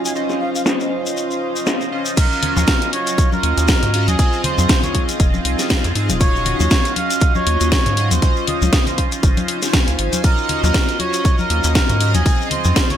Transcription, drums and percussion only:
0.05 shekere
0.16 shekere
0.30 snare, shekere
0.56 shekere
0.66 snare, shekere
0.80 shekere
1.06 shekere
1.17 shekere
1.31 shekere
1.56 shekere
1.66 snare, shekere
1.81 shekere
2.06 shekere
2.17 kick, closed hi-hat, crash, shekere
2.32 shekere
2.43 open hi-hat, low conga
2.56 high conga, shekere
2.67 kick, snare, closed hi-hat, shekere
2.82 closed hi-hat, shekere
2.93 open hi-hat
3.07 closed hi-hat, shekere
3.18 kick, closed hi-hat, shekere
3.32 high conga, shekere
3.43 open hi-hat
3.58 closed hi-hat, shekere
3.68 kick, snare, closed hi-hat, high conga, shekere
3.83 closed hi-hat, low conga, shekere
3.94 open hi-hat
4.08 closed hi-hat, high conga, shekere
4.19 kick, closed hi-hat, shekere
4.33 shekere
4.44 open hi-hat, low conga
4.58 high conga, shekere
4.69 kick, snare, closed hi-hat, shekere
4.83 closed hi-hat, low conga, shekere
4.95 kick, open hi-hat, high conga
5.09 closed hi-hat, shekere
5.20 kick, closed hi-hat, shekere
5.34 high conga, shekere
5.45 open hi-hat
5.59 snare, closed hi-hat, shekere
5.70 kick, snare, closed hi-hat, high conga, shekere
5.84 closed hi-hat, shekere
5.95 open hi-hat
6.09 closed hi-hat, high conga, shekere
6.21 kick, closed hi-hat, shekere
6.36 shekere
6.45 open hi-hat, low conga
6.60 high conga, shekere
6.71 kick, snare, closed hi-hat, shekere
6.85 closed hi-hat, shekere
6.96 open hi-hat, high conga
7.10 closed hi-hat, shekere
7.21 kick, closed hi-hat, shekere
7.35 high conga, shekere
7.47 open hi-hat
7.61 closed hi-hat, shekere
7.72 kick, snare, closed hi-hat, high conga, shekere
7.86 closed hi-hat, low conga, shekere
7.97 open hi-hat
8.11 closed hi-hat, high conga, shekere
8.22 kick, closed hi-hat, shekere
8.36 shekere
8.47 open hi-hat, low conga
8.62 high conga, shekere
8.73 kick, snare, closed hi-hat, shekere
8.87 closed hi-hat, low conga, shekere
8.98 kick, open hi-hat
9.12 closed hi-hat, shekere
9.23 kick, closed hi-hat, shekere
9.37 open hi-hat, high conga, shekere
9.48 open hi-hat
9.62 snare, closed hi-hat, shekere
9.73 kick, snare, closed hi-hat, high conga, shekere
9.88 closed hi-hat, shekere
9.99 open hi-hat
10.13 closed hi-hat, high conga, shekere
10.24 kick, closed hi-hat, shekere
10.38 shekere
10.49 open hi-hat, low conga
10.64 high conga, shekere
10.74 kick, snare, closed hi-hat, shekere
10.89 closed hi-hat, shekere
11.00 open hi-hat, high conga
11.13 closed hi-hat, shekere
11.25 kick, closed hi-hat, shekere
11.38 high conga, shekere
11.50 open hi-hat
11.64 closed hi-hat, shekere
11.75 kick, snare, closed hi-hat, high conga, shekere
11.89 closed hi-hat, low conga, shekere
12.01 open hi-hat
12.14 closed hi-hat, high conga, shekere
12.26 kick, closed hi-hat, shekere
12.41 shekere
12.51 open hi-hat, low conga
12.64 high conga, shekere
12.76 kick, snare, closed hi-hat, shekere
12.90 closed hi-hat, low conga, shekere

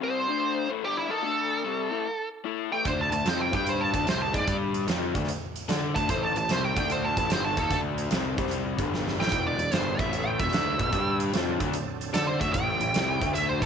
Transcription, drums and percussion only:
2.85 kick, closed hi-hat
3.12 closed hi-hat
3.26 snare, closed hi-hat
3.53 kick, closed hi-hat
3.67 closed hi-hat
3.94 kick, closed hi-hat
4.07 snare, closed hi-hat
4.34 kick, closed hi-hat
4.47 kick, closed hi-hat
4.74 closed hi-hat
4.88 snare, closed hi-hat
5.15 kick, closed hi-hat
5.24 snare
5.28 closed hi-hat
5.56 closed hi-hat
5.69 snare, closed hi-hat
5.96 kick, closed hi-hat
6.09 kick, closed hi-hat
6.36 closed hi-hat
6.49 snare, closed hi-hat
6.76 kick, closed hi-hat
6.90 closed hi-hat
7.17 kick, closed hi-hat
7.30 snare, closed hi-hat
7.57 kick, closed hi-hat
7.71 kick, closed hi-hat
7.98 closed hi-hat
8.11 snare, closed hi-hat
8.38 kick, closed hi-hat
8.47 snare
8.51 closed hi-hat
8.79 kick, closed hi-hat
8.94 snare
9.08 snare
9.21 snare
9.28 snare
9.32 kick, closed hi-hat
9.59 closed hi-hat
9.72 snare, closed hi-hat
9.99 kick, closed hi-hat
10.13 closed hi-hat
10.40 kick, closed hi-hat
10.48 snare
10.53 snare, closed hi-hat
10.79 kick, closed hi-hat
10.92 kick, closed hi-hat
11.20 closed hi-hat
11.33 snare, closed hi-hat
11.60 kick, closed hi-hat
11.73 closed hi-hat
12.01 closed hi-hat
12.14 snare, closed hi-hat
12.41 kick, closed hi-hat
12.54 kick, closed hi-hat
12.81 closed hi-hat
12.94 snare, closed hi-hat
13.22 kick, closed hi-hat
13.35 closed hi-hat
13.62 kick, closed hi-hat

